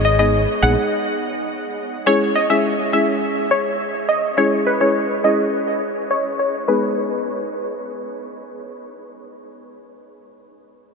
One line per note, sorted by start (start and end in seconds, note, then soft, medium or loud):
0.00 0.44 G#1 loud
0.00 0.15 G#3 medium
0.00 0.16 B3 medium
0.00 0.16 D#4 medium
0.00 0.16 G#4 loud
0.05 0.14 D#5 medium
0.19 0.36 G#3 medium
0.19 0.36 B3 medium
0.19 0.36 D#4 medium
0.19 0.36 G#4 medium
0.19 0.28 D#5 medium
0.62 0.74 A#1 loud
0.62 0.79 G#3 medium
0.62 0.79 B3 medium
0.62 0.79 D#4 medium
0.62 0.80 G#4 medium
0.62 0.71 F#5 medium
2.06 2.46 G#3 medium
2.06 2.46 C#4 medium
2.06 2.47 E4 medium
2.06 2.47 G#4 loud
2.06 2.16 C#5 loud
2.35 2.44 D#5 medium
2.50 2.67 G#3 medium
2.50 2.67 C#4 medium
2.50 2.67 E4 medium
2.50 2.67 G#4 medium
2.50 2.59 E5 medium
2.93 3.10 G#3 medium
2.93 3.10 C#4 medium
2.93 3.10 E4 medium
2.93 3.10 G#4 medium
2.93 3.02 E5 medium
3.51 3.60 C#5 medium
4.09 4.17 D#5 medium
4.37 4.77 G#3 medium
4.37 4.77 C#4 medium
4.37 4.77 E4 medium
4.37 4.77 G#4 loud
4.37 4.47 C#5 loud
4.67 4.75 B4 medium
4.80 4.97 G#3 medium
4.80 4.98 C#4 medium
4.80 4.98 E4 medium
4.80 4.98 G#4 medium
4.80 4.90 C#5 medium
5.24 5.41 G#3 medium
5.24 5.41 C#4 medium
5.24 5.41 E4 medium
5.24 5.41 G#4 medium
5.24 5.33 D#5 medium
6.11 6.19 C#5 medium
6.39 6.48 C#5 medium
6.68 9.93 G#3 medium
6.68 9.93 B3 medium
6.68 9.93 D#4 medium
6.68 9.93 G#4 medium
6.68 8.37 B4 medium